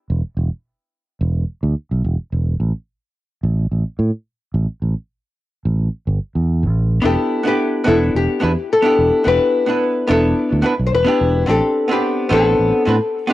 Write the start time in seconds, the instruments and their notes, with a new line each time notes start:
0.10 fingered electric bass E1
0.37 fingered electric bass E1
1.21 fingered electric bass E1
1.63 fingered electric bass D2
1.91 fingered electric bass B1
2.04 fingered electric bass E1
2.32 fingered electric bass E1
2.60 fingered electric bass A1
3.43 fingered electric bass A1
3.71 fingered electric bass A1
3.99 fingered electric bass A2
4.54 fingered electric bass A1
4.82 fingered electric bass A1
5.65 fingered electric bass A1
6.07 fingered electric bass G1
6.35 fingered electric bass E2
6.63 fingered electric bass A1
7.02 fingered electric bass E1, hollow-body jazz guitar B3 D4 E4 G4, nylon-string guitar A4
7.43 hollow-body jazz guitar B3 D4 E4 B4
7.48 nylon-string guitar G4
7.84 fingered electric bass E1, hollow-body jazz guitar B3 D4 E4 A4
7.88 nylon-string guitar E4
8.15 fingered electric bass E1, nylon-string guitar G4
8.40 fingered electric bass E2, hollow-body jazz guitar B3 D4 E4 B4
8.73 nylon-string guitar A4
8.82 hollow-body jazz guitar B3 D4 E4 G4
8.98 fingered electric bass E1
9.24 fingered electric bass E1, hollow-body jazz guitar B3 D4 E4 G4, nylon-string guitar B4
9.66 hollow-body jazz guitar B3 D4 E4 B4
10.07 fingered electric bass E1, hollow-body jazz guitar B3 D4 E4 A4
10.53 fingered electric bass D2
10.62 hollow-body jazz guitar B3 D4 E4 B4
10.79 fingered electric bass B1
10.87 nylon-string guitar C5
10.93 fingered electric bass E1, nylon-string guitar B4
11.05 hollow-body jazz guitar B3 D4 E4 G4
11.21 fingered electric bass E1
11.46 fingered electric bass A1, hollow-body jazz guitar B3 C4 D4 G4
11.51 nylon-string guitar A4
11.88 hollow-body jazz guitar B3 C4 D4 B4
11.93 nylon-string guitar G4
12.29 fingered electric bass A1, hollow-body jazz guitar B3 C4 D4 A4
12.34 nylon-string guitar A4
12.59 fingered electric bass A1
12.85 fingered electric bass A2, hollow-body jazz guitar B3 C4 D4 B4
13.27 hollow-body jazz guitar B3 C4 D4